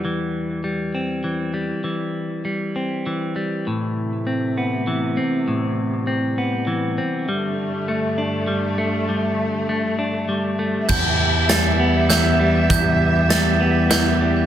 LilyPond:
<<
  \new Staff \with { instrumentName = "Glockenspiel" } { \time 3/4 \key e \minor \tempo 4 = 99 r2. | r2. | r2. | r2. |
r2. | r2. | g'''4 a'''4 g'''4 | g'''4 a'''4 g'''4 | }
  \new Staff \with { instrumentName = "String section" } { \time 3/4 \key e \minor << { r2. | r2. | a2. | g2. |
<d a>2.~ | <d a>2. | <g' e''>2.~ | <g' e''>2. | } \\ { r2. | r2. | c2.~ | c2. |
g,2.~ | g,2. | b2.~ | b2. | } >> }
  \new Staff \with { instrumentName = "Clean electric guitar" } { \clef bass \time 3/4 \key e \minor e4 g8 c'8 e8 g8 | e4 g8 c'8 e8 g8 | a,4 c'8 b8 e8 c'8 | a,4 c'8 b8 e8 c'8 |
g4 a8 d'8 g8 a8 | g4 a8 d'8 g8 a8 | e,4 g8 b8 e8 g8 | e,4 g8 b8 e8 g8 | }
  \new Staff \with { instrumentName = "Picked electric bass" } { \clef bass \time 3/4 \key e \minor r2. | r2. | r2. | r2. |
r2. | r2. | e,2. | e,2. | }
  \new DrumStaff \with { instrumentName = "Drums" } \drummode { \time 3/4 r4 r4 r4 | r4 r4 r4 | r4 r4 r4 | r4 r4 r4 |
r4 r4 r4 | r4 r4 r4 | <cymc bd>4 <hh sn>4 <hh sn>4 | <hh bd>4 <hh sn>4 <hh sn>4 | }
>>